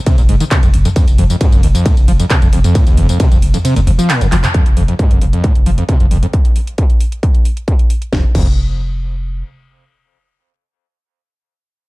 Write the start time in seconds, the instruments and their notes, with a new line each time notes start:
0.06 acid bass C3, kick, closed hi-hat, ride, tambourine
0.18 808-style bass F1, acid bass A#2, closed hi-hat, tambourine
0.29 808-style bass F1, acid bass G#2, open hi-hat
0.40 acid bass D#3, closed hi-hat, tambourine
0.51 acid bass C3, kick, clap, closed hi-hat, ride, tambourine
0.63 808-style bass F1, acid bass F2, closed hi-hat, tambourine
0.74 808-style bass F1, mid tom, open hi-hat
0.85 acid bass F2, closed hi-hat, mid tom, tambourine
0.96 acid bass F2, kick, closed hi-hat, ride, tambourine
1.08 808-style bass F1, closed hi-hat, tambourine
1.18 808-style bass F1, acid bass F2, open hi-hat
1.30 acid bass F2, closed hi-hat, tambourine
1.41 acid bass G#2, kick, closed hi-hat, ride, tambourine
1.52 808-style bass F1, acid bass F2, closed hi-hat, tambourine
1.63 808-style bass F1, acid bass D#2, open hi-hat
1.75 acid bass F2, closed hi-hat, tambourine
1.86 acid bass A#2, kick, closed hi-hat, ride, tambourine
1.97 808-style bass F1, closed hi-hat, tambourine
2.08 808-style bass F1, acid bass F3, open hi-hat
2.20 acid bass F2, closed hi-hat, tambourine
2.30 acid bass C3, kick, clap, closed hi-hat, ride, tambourine
2.42 808-style bass F1, acid bass F2, closed hi-hat, tambourine
2.53 808-style bass F1, acid bass F2, mid tom, open hi-hat
2.64 acid bass F2, closed hi-hat, mid tom, tambourine
2.75 acid bass A#2, kick, closed hi-hat, ride, tambourine
2.87 808-style bass F1, acid bass D#2, closed hi-hat, tambourine
2.97 808-style bass F1, acid bass F2, open hi-hat
3.09 acid bass F2, closed hi-hat, tambourine
3.20 acid bass C3, kick, closed hi-hat, ride, tambourine
3.31 808-style bass F1, acid bass F2, closed hi-hat, tambourine
3.42 808-style bass F1, open hi-hat
3.54 acid bass F2, closed hi-hat, mid tom, tambourine
3.65 acid bass C3, closed hi-hat, ride, tambourine
3.76 808-style bass F1, acid bass A#2, closed hi-hat, mid tom, tambourine
3.87 808-style bass F1, acid bass F2, open hi-hat
3.99 acid bass F3, closed hi-hat, tambourine
4.09 acid bass A#2, clap, closed hi-hat, ride, tambourine
4.21 808-style bass F1, acid bass F2, closed hi-hat, tambourine
4.32 808-style bass F1, acid bass F3, clap, mid tom, open hi-hat
4.43 acid bass C3, clap, closed hi-hat, mid tom, tambourine
4.54 acid bass F2, kick, closed hi-hat
4.66 808-style bass F1, closed hi-hat
4.77 808-style bass F1, acid bass F2, open hi-hat
4.88 acid bass F2, closed hi-hat
4.99 acid bass G#2, kick, closed hi-hat
5.11 808-style bass F1, acid bass F2, closed hi-hat
5.21 808-style bass F1, acid bass D#2, open hi-hat
5.33 acid bass F2, closed hi-hat
5.44 acid bass A#2, kick, closed hi-hat
5.55 808-style bass F1, closed hi-hat
5.66 808-style bass F1, acid bass F3, open hi-hat
5.78 acid bass F2, closed hi-hat
5.89 acid bass C3, kick, closed hi-hat
6.00 808-style bass F1, acid bass F2, closed hi-hat
6.11 808-style bass F1, acid bass F2, open hi-hat
6.23 acid bass F2, closed hi-hat
6.33 kick, closed hi-hat
6.45 closed hi-hat
6.56 open hi-hat
6.67 closed hi-hat
6.78 kick, closed hi-hat
6.90 closed hi-hat
7.01 open hi-hat
7.12 closed hi-hat
7.23 kick, closed hi-hat
7.35 closed hi-hat
7.45 open hi-hat
7.57 closed hi-hat
7.68 kick, closed hi-hat
7.79 closed hi-hat
7.90 open hi-hat
8.02 closed hi-hat
8.12 808-style bass F1, acid bass F2, kick, snare
8.35 808-style bass F1, acid bass F2, kick, crash